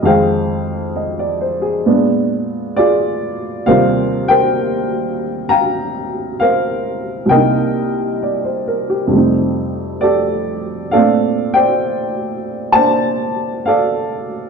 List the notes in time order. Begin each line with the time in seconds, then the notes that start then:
0.02 F2 D#3 G#3 G#4 C5 F5
0.07 G5
0.96 D#5
1.19 D5
1.41 C5
1.62 G#4
1.86 A#2 G#3 B3 D4
2.76 F4 G#4 D5
3.66 D#2 C3 G3 A#4 C5 F5
3.71 F4
4.28 A#4 C5 G5
5.49 F5 G5 A#5
6.40 A#4 C5 F5
7.26 C2 G5
7.30 C3 A#3 A#4 D#5
7.37 D#4
8.23 D5
8.44 C5
8.68 A#4
8.90 G4
9.07 F2 C3
9.11 G3 A3 C4
9.18 D#4
10.01 G4 A4 D5
10.91 A#2 A3 C4 D4 A4 D5 F5
11.54 C5 D5 G5
12.72 A#3 C5 D5 A5
12.77 D4
13.66 A4 D5 F5